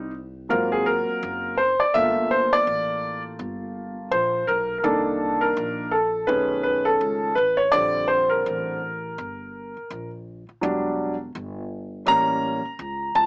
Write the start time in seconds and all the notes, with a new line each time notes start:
Already playing: C2 C4 D#4
0.49 G#1 F#3 A#3 C4 F4 A#4
0.72 G#4
0.86 A#4
1.09 muted upright bass stroke
1.23 F#1
1.57 C5
1.80 D5, muted upright bass stroke
1.94 G1 A3 A#3 F4 E5
2.31 C5
2.53 D5
2.67 A1
3.39 G1
4.11 A#1 C5
4.47 B1 A#4
4.78 A#4
4.83 C2 D#3 A#3 D4 A4
5.41 A#4
5.57 A#1
5.91 A4
6.27 B1 D#3 A3 C#4 G#4 B4
6.63 B4
6.85 A4
7.01 C#2
7.35 A1 B4
7.57 C#5
7.72 A#1 D3 G3 C4 D5
8.08 C5
8.29 A#4
8.46 A1
9.18 G1
9.77 muted upright bass stroke
9.90 A#1
10.49 muted upright bass stroke
10.61 E1 F#3 G3 D4
11.35 G1
12.06 A1 G3 A#3 C#4 A#5
12.65 muted upright bass stroke
12.79 C#2
13.15 C#2 A5